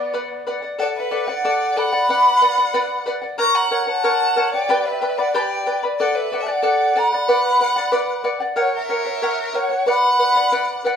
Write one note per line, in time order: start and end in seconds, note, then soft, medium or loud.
0.00 0.42 B3 medium
0.00 0.13 D5 soft
0.00 0.43 D5 medium
0.00 0.13 F#5 soft
0.14 0.45 B4 medium
0.14 0.46 D5 medium
0.14 0.47 F#5 medium
0.47 0.63 B4 medium
0.47 0.63 D5 medium
0.47 0.61 F#5 medium
0.62 0.78 D5 soft
0.62 0.78 F#5 soft
0.78 1.10 A4 medium
0.78 1.10 D5 medium
0.78 0.88 D5 medium
0.78 1.11 F#5 medium
0.78 0.87 F#5 medium
0.97 1.31 B4 medium
0.97 1.31 E5 medium
1.11 1.28 A4 medium
1.11 1.28 D5 medium
1.11 1.26 F#5 medium
1.28 1.44 D5 soft
1.28 1.78 D5 medium
1.28 1.44 F#5 medium
1.28 1.79 F#5 medium
1.45 1.76 A4 medium
1.45 1.76 D5 medium
1.45 1.77 F#5 medium
1.77 1.93 A4 medium
1.77 1.92 D5 medium
1.77 3.07 F#5 medium
1.77 1.91 F#5 medium
1.77 3.07 B5 loud
1.92 2.09 D5 soft
1.92 2.09 F#5 medium
2.09 2.40 B4 medium
2.09 2.41 D5 medium
2.09 2.41 F#5 medium
2.41 2.58 B4 medium
2.41 2.58 D5 medium
2.41 2.57 F#5 medium
2.58 2.73 D5 soft
2.58 2.74 F#5 medium
2.73 3.05 B4 medium
2.73 3.05 D5 loud
2.73 3.06 F#5 medium
3.06 3.23 B4 medium
3.06 3.22 D5 medium
3.06 3.21 F#5 medium
3.22 3.38 D5 soft
3.22 3.38 F#5 soft
3.38 3.70 A#4 medium
3.38 3.70 C#5 medium
3.38 3.71 F#5 medium
3.38 3.57 A#5 medium
3.38 3.58 C#6 loud
3.55 3.80 F#5 medium
3.55 3.83 A#5 medium
3.71 3.88 A#4 medium
3.71 3.87 C#5 medium
3.71 3.86 F#5 medium
3.80 3.87 F#5 medium
3.80 3.90 A#5 medium
3.87 4.03 C#5 soft
3.87 4.04 F#5 medium
3.87 4.52 F#5 medium
3.87 4.53 A5 loud
4.04 4.35 A#4 medium
4.04 4.36 C#5 medium
4.04 4.36 F#5 medium
4.36 4.53 A#4 medium
4.36 4.53 C#5 medium
4.36 4.52 F#5 medium
4.52 4.69 C#5 soft
4.52 4.87 D5 medium
4.52 4.69 F#5 medium
4.52 4.88 G5 medium
4.69 5.02 G4 medium
4.69 5.01 B4 medium
4.69 5.01 D5 medium
4.69 5.00 G5 medium
4.69 5.02 B5 medium
4.85 5.19 B4 medium
4.85 5.20 E5 medium
5.01 5.18 B4 medium
5.01 5.17 D5 medium
5.01 5.18 G5 medium
5.01 5.17 B5 medium
5.18 5.33 B4 soft
5.18 5.33 D5 medium
5.18 5.34 D5 medium
5.18 5.35 F#5 medium
5.18 5.34 B5 medium
5.34 5.67 G4 medium
5.34 5.65 B4 medium
5.34 5.79 D5 medium
5.34 5.66 D5 medium
5.34 5.65 G5 medium
5.34 5.41 A5 medium
5.34 5.66 B5 medium
5.40 5.80 G5 medium
5.66 5.83 B4 medium
5.66 5.83 D5 medium
5.66 5.83 G5 medium
5.66 5.82 B5 medium
5.83 6.00 B4 soft
5.83 5.99 D5 soft
5.83 5.99 B5 soft
5.99 6.31 A4 medium
5.99 6.16 D5 medium
5.99 6.31 D5 medium
5.99 6.18 F#5 medium
5.99 6.32 F#5 medium
6.15 6.42 B4 medium
6.15 6.44 E5 medium
6.32 6.48 A4 medium
6.32 6.47 D5 medium
6.32 6.45 F#5 medium
6.40 6.49 E5 medium
6.40 6.51 A5 medium
6.46 6.99 D5 medium
6.46 6.62 D5 soft
6.46 6.62 F#5 medium
6.46 6.54 G5 medium
6.53 6.99 F#5 medium
6.62 6.94 A4 medium
6.62 6.94 D5 medium
6.62 6.95 F#5 medium
6.96 7.12 A4 medium
6.96 7.12 D5 medium
6.96 7.11 F#5 medium
6.96 8.26 F#5 medium
6.96 8.27 B5 medium
7.12 7.28 D5 soft
7.12 7.28 F#5 medium
7.28 7.59 B4 medium
7.28 7.60 D5 medium
7.28 7.60 F#5 medium
7.60 7.77 B4 soft
7.60 7.77 D5 medium
7.60 7.75 F#5 medium
7.76 7.91 D5 soft
7.76 7.92 F#5 medium
7.92 8.23 B4 medium
7.92 8.23 D5 medium
7.92 8.24 F#5 loud
8.24 8.41 B4 medium
8.24 8.40 D5 medium
8.24 8.39 F#5 medium
8.40 8.58 D5 soft
8.40 8.56 F#5 medium
8.56 8.88 A#4 medium
8.56 8.89 C#5 medium
8.56 8.74 C#5 medium
8.56 8.89 F#5 medium
8.61 8.75 F#5 medium
8.76 9.57 A#4 medium
8.76 9.58 E5 medium
8.89 9.06 A#4 medium
8.89 9.05 C#5 medium
8.89 9.04 F#5 medium
9.05 9.21 C#5 soft
9.05 9.22 F#5 medium
9.22 9.53 A#4 medium
9.22 9.53 C#5 medium
9.22 9.54 F#5 medium
9.54 9.71 A#4 medium
9.54 9.70 C#5 medium
9.54 9.87 C#5 medium
9.54 9.68 F#5 medium
9.54 9.88 F#5 medium
9.69 9.88 C#5 soft
9.69 9.87 F#5 soft
9.86 10.18 B4 medium
9.86 10.19 D5 medium
9.86 10.19 F#5 medium
9.86 10.81 F#5 medium
9.86 10.82 B5 loud
10.19 10.36 B4 medium
10.19 10.36 D5 medium
10.19 10.34 F#5 medium
10.36 10.51 D5 soft
10.36 10.52 F#5 medium
10.52 10.83 B4 medium
10.52 10.84 D5 medium
10.52 10.85 F#5 medium
10.85 10.96 B4 medium
10.85 10.96 D5 medium
10.85 10.96 F#5 medium